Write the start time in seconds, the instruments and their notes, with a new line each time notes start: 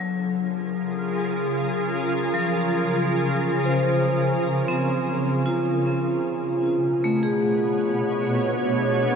Already playing: ambient pad C#3 F4 G#4 A#4 C#5
0.00 vibraphone F#3
2.34 vibraphone F3
3.64 vibraphone C5
4.68 vibraphone C4
5.46 vibraphone F4
6.06 ambient pad B2
6.18 ambient pad B3
6.51 ambient pad C#5
6.91 ambient pad A3
7.04 vibraphone A3
7.23 vibraphone G#4
7.46 ambient pad D4